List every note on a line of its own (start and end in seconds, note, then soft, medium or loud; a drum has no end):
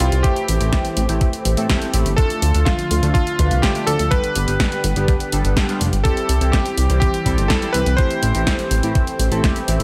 0.00 0.11 C2 medium
0.00 2.14 E3 medium
0.00 0.21 G3 medium
0.00 2.14 C4 medium
0.00 0.24 F4 medium
0.00 2.14 G4 medium
0.00 closed hi-hat medium
0.12 0.23 C2 medium
0.12 closed hi-hat soft
0.23 0.58 A3 medium
0.23 4.08 A3 medium
0.23 0.58 C4 medium
0.23 0.58 E4 medium
0.23 1.65 G4 medium
0.23 0.58 G4 medium
0.23 kick loud
0.23 closed hi-hat medium
0.36 closed hi-hat soft
0.48 0.59 A1 medium
0.48 closed hi-hat loud
0.61 0.71 A1 medium
0.61 0.78 A3 medium
0.61 0.78 C4 medium
0.61 0.78 E4 medium
0.61 0.78 G4 medium
0.61 closed hi-hat soft
0.73 kick loud
0.73 snare loud
0.73 closed hi-hat medium
0.85 closed hi-hat soft
0.97 1.07 A1 medium
0.97 closed hi-hat medium
1.09 1.20 A1 medium
1.09 1.26 A3 medium
1.09 1.26 C4 medium
1.09 1.26 E4 medium
1.09 1.26 G4 medium
1.09 closed hi-hat soft
1.21 kick loud
1.21 closed hi-hat medium
1.33 closed hi-hat soft
1.45 1.56 A1 medium
1.45 closed hi-hat medium
1.57 1.68 A2 medium
1.57 1.68 A3 medium
1.57 1.68 C4 medium
1.57 1.68 E4 medium
1.57 1.68 A4 medium
1.57 closed hi-hat soft
1.70 1.91 A3 medium
1.70 1.91 C4 medium
1.70 1.91 E4 medium
1.70 1.91 G4 medium
1.70 kick loud
1.70 snare loud
1.70 closed hi-hat medium
1.82 closed hi-hat soft
1.94 2.04 A1 medium
1.94 2.11 A3 medium
1.94 2.11 C4 medium
1.94 2.11 E4 medium
1.94 2.11 G4 medium
1.94 closed hi-hat medium
2.06 2.16 G1 medium
2.06 closed hi-hat soft
2.17 6.01 D3 medium
2.17 4.10 F3 medium
2.17 2.51 A3 medium
2.17 2.51 D4 medium
2.17 2.51 F4 medium
2.17 4.10 F4 medium
2.17 2.67 A4 medium
2.17 2.51 A4 medium
2.17 kick loud
2.17 closed hi-hat medium
2.30 closed hi-hat soft
2.42 2.53 D2 medium
2.42 closed hi-hat loud
2.54 2.65 D2 medium
2.54 2.71 A3 medium
2.54 2.71 D4 medium
2.54 2.71 F4 medium
2.54 2.71 A4 medium
2.54 closed hi-hat soft
2.65 3.11 F4 medium
2.65 kick loud
2.65 snare loud
2.65 closed hi-hat medium
2.79 closed hi-hat soft
2.91 3.01 D2 medium
2.91 closed hi-hat medium
3.03 3.13 D2 medium
3.03 3.20 A3 medium
3.03 3.20 D4 medium
3.03 3.20 F4 medium
3.03 3.20 A4 medium
3.03 closed hi-hat soft
3.14 3.64 F4 medium
3.14 kick loud
3.14 closed hi-hat medium
3.27 closed hi-hat soft
3.39 3.49 D2 medium
3.39 3.72 A3 medium
3.39 3.72 D4 medium
3.39 3.72 F4 medium
3.39 3.72 B4 medium
3.39 kick medium
3.39 closed hi-hat medium
3.51 3.61 C2 medium
3.51 closed hi-hat soft
3.62 3.85 G4 medium
3.62 kick loud
3.62 snare loud
3.62 closed hi-hat medium
3.75 3.92 A3 medium
3.75 3.92 D4 medium
3.75 3.92 F4 medium
3.75 3.92 G4 loud
3.75 closed hi-hat soft
3.87 3.98 D2 loud
3.87 4.12 A4 loud
3.87 closed hi-hat medium
3.99 4.10 D2 medium
3.99 closed hi-hat soft
4.11 6.03 G3 medium
4.11 4.45 G3 medium
4.11 6.03 B3 medium
4.11 4.45 B3 medium
4.11 4.45 D4 medium
4.11 9.83 G4 loud
4.11 4.45 G4 medium
4.11 5.77 B4 loud
4.11 kick loud
4.11 closed hi-hat medium
4.24 closed hi-hat soft
4.36 4.46 G1 medium
4.36 closed hi-hat medium
4.48 4.58 G1 medium
4.48 4.65 G3 medium
4.48 4.65 B3 medium
4.48 4.65 D4 medium
4.48 4.65 G4 medium
4.48 closed hi-hat soft
4.60 kick loud
4.60 snare loud
4.60 closed hi-hat medium
4.72 closed hi-hat soft
4.84 4.94 G1 medium
4.84 closed hi-hat medium
4.96 5.07 G1 medium
4.96 5.13 G3 medium
4.96 5.13 B3 medium
4.96 5.13 D4 medium
4.96 5.13 G4 medium
4.96 closed hi-hat soft
5.08 kick loud
5.08 closed hi-hat medium
5.20 closed hi-hat soft
5.32 5.43 G1 medium
5.32 5.66 G3 medium
5.32 5.66 B3 medium
5.32 5.66 D4 medium
5.32 5.66 A4 medium
5.32 closed hi-hat medium
5.45 5.55 G1 medium
5.45 closed hi-hat soft
5.57 kick loud
5.57 snare loud
5.57 closed hi-hat medium
5.69 5.86 G3 medium
5.69 5.86 B3 medium
5.69 5.86 D4 medium
5.69 5.86 F4 loud
5.69 closed hi-hat soft
5.81 5.91 F1 medium
5.81 closed hi-hat medium
5.93 6.03 G1 medium
5.93 closed hi-hat soft
6.04 9.83 E3 medium
6.04 7.97 G3 medium
6.04 6.38 G3 medium
6.04 7.97 C4 medium
6.04 6.38 C4 medium
6.04 6.38 E4 medium
6.04 6.38 G4 medium
6.04 6.54 A4 medium
6.04 kick loud
6.04 closed hi-hat medium
6.17 closed hi-hat soft
6.29 6.40 C2 medium
6.29 closed hi-hat loud
6.41 6.52 C2 medium
6.41 6.58 G3 medium
6.41 6.58 C4 medium
6.41 6.59 E4 medium
6.41 6.59 G4 medium
6.41 closed hi-hat soft
6.52 6.98 G4 medium
6.52 kick loud
6.52 snare loud
6.52 closed hi-hat medium
6.66 closed hi-hat soft
6.78 6.88 C2 medium
6.78 closed hi-hat medium
6.90 7.00 C2 medium
6.90 7.07 G3 medium
6.90 7.07 C4 medium
6.90 7.07 E4 medium
6.90 7.07 G4 medium
6.90 closed hi-hat soft
7.00 7.51 G4 medium
7.00 kick loud
7.00 closed hi-hat medium
7.14 closed hi-hat soft
7.26 7.36 C2 medium
7.26 7.59 G3 medium
7.26 7.59 C4 medium
7.26 7.59 E4 medium
7.26 7.59 A4 medium
7.26 kick medium
7.26 closed hi-hat medium
7.38 7.48 G1 medium
7.38 closed hi-hat soft
7.48 7.72 A4 medium
7.48 kick loud
7.48 snare loud
7.48 closed hi-hat medium
7.62 7.79 G3 medium
7.62 7.79 C4 medium
7.62 7.79 E4 medium
7.62 7.79 G4 loud
7.62 closed hi-hat soft
7.73 7.85 C2 loud
7.73 7.98 B4 loud
7.73 closed hi-hat medium
7.86 7.97 C2 medium
7.86 closed hi-hat soft
7.97 9.83 A3 medium
7.97 8.32 A3 medium
7.97 9.83 C4 medium
7.97 8.32 C4 medium
7.97 8.32 E4 medium
7.97 8.32 G4 medium
7.97 9.63 C5 loud
7.97 kick loud
7.97 closed hi-hat medium
8.11 closed hi-hat soft
8.23 8.33 A1 medium
8.23 closed hi-hat medium
8.35 8.45 A1 medium
8.35 8.52 A3 medium
8.35 8.52 C4 medium
8.35 8.52 E4 medium
8.35 8.52 G4 medium
8.35 closed hi-hat soft
8.47 kick loud
8.47 snare loud
8.47 closed hi-hat medium
8.59 closed hi-hat soft
8.71 8.82 A1 medium
8.71 closed hi-hat medium
8.83 8.94 A1 medium
8.83 9.01 A3 medium
8.83 9.01 C4 medium
8.83 9.01 E4 medium
8.83 9.01 G4 medium
8.83 closed hi-hat soft
8.95 kick loud
8.95 closed hi-hat medium
9.07 closed hi-hat soft
9.19 9.30 A1 medium
9.19 closed hi-hat medium
9.32 9.42 A1 medium
9.32 9.42 A3 medium
9.32 9.42 C4 medium
9.32 9.42 E4 medium
9.32 9.42 A4 loud
9.32 closed hi-hat soft
9.44 9.65 A3 medium
9.44 9.65 C4 medium
9.44 9.65 E4 medium
9.44 9.65 G4 medium
9.44 kick loud
9.44 snare loud
9.44 closed hi-hat medium
9.56 closed hi-hat soft
9.68 9.78 A1 loud
9.68 9.83 A3 medium
9.68 9.83 C4 medium
9.68 9.83 E4 medium
9.68 9.83 G4 medium
9.68 closed hi-hat medium
9.80 9.83 A1 medium
9.80 closed hi-hat soft